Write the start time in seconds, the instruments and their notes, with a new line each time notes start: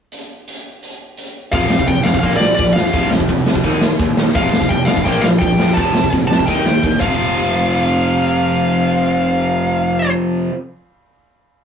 0.12 closed hi-hat
0.48 closed hi-hat
0.83 closed hi-hat
1.17 closed hi-hat
1.52 picked electric bass F1, overdriven electric guitar F2 C3 F3, lead electric guitar F5, kick, open hi-hat
1.70 picked electric bass F1, overdriven electric guitar F2 C3, snare
1.79 kick
1.87 picked electric bass F1, overdriven electric guitar F2 C3, lead electric guitar G5, kick, open hi-hat
2.03 picked electric bass F1, overdriven electric guitar F2 C3, lead electric guitar F5, snare
2.14 kick
2.19 picked electric bass A#1, overdriven electric guitar A#2 F3, lead electric guitar F5, kick, open hi-hat
2.24 overdriven electric guitar A#3
2.36 picked electric bass A#1, overdriven electric guitar A#2, lead electric guitar D5
2.41 overdriven electric guitar F3, snare
2.55 picked electric bass A#1, overdriven electric guitar A#2 F3, lead electric guitar D5, kick, open hi-hat
2.73 picked electric bass F2, overdriven electric guitar A#2 F3, lead electric guitar F5, snare
2.92 picked electric bass F1, overdriven electric guitar F2 C3 F3, kick, open hi-hat
3.11 picked electric bass F1, overdriven electric guitar F2 C3, snare
3.20 kick
3.29 picked electric bass F1, overdriven electric guitar F2 C3, kick, open hi-hat
3.46 overdriven electric guitar F2 C3, picked electric bass F2, snare
3.55 kick
3.63 picked electric bass D#2, overdriven electric guitar D#3 A#3 D#4, kick, open hi-hat
3.81 picked electric bass D#2, overdriven electric guitar D#3 A#3, snare
3.99 picked electric bass D#2, overdriven electric guitar D#3 A#3, kick, open hi-hat
4.17 overdriven electric guitar D#3 A#3, picked electric bass D#3, snare
4.34 picked electric bass F1, overdriven electric guitar F2 C3 F3, lead electric guitar F5, kick, open hi-hat
4.51 picked electric bass F1, overdriven electric guitar F2 C3, snare
4.62 kick
4.69 picked electric bass F1, overdriven electric guitar F2 C3, lead electric guitar G5, kick, open hi-hat
4.85 picked electric bass F1, overdriven electric guitar F2 C3, lead electric guitar F5, snare
4.97 kick
5.04 picked electric bass A#1, overdriven electric guitar A#2 F3 A#3, lead electric guitar G5, kick, open hi-hat
5.21 picked electric bass A#1, overdriven electric guitar A#2 F3, lead electric guitar F5, snare
5.39 picked electric bass A#1, overdriven electric guitar A#2 F3, lead electric guitar G5, kick, open hi-hat
5.58 picked electric bass F2, overdriven electric guitar A#2 F3, snare
5.74 picked electric bass F1, overdriven electric guitar F2 C3 F3, lead electric guitar A5, kick, open hi-hat
5.93 picked electric bass F1, overdriven electric guitar F2 C3, snare
6.04 kick
6.13 picked electric bass F1, overdriven electric guitar F2 C3, kick, open hi-hat
6.28 picked electric bass F1, overdriven electric guitar F2 C3, lead electric guitar A5, snare
6.39 kick
6.46 picked electric bass D#2, overdriven electric guitar D#3 A#3 D#4, lead electric guitar G5, kick, open hi-hat
6.65 picked electric bass D#2, overdriven electric guitar D#3 A#3, snare
6.83 picked electric bass D#2, overdriven electric guitar D#3 A#3, kick, open hi-hat
7.00 picked electric bass F1, overdriven electric guitar F2 C3 F3, lead electric guitar F5, kick, crash